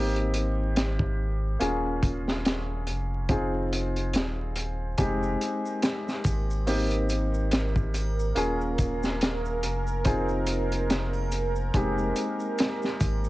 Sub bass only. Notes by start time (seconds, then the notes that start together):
Already playing: G#1
1.61 D#1
2.87 F1
4.14 D#1
4.98 F1
6.25 G#1
8.36 D#1
9.63 F1
11.74 F1
13.01 G#1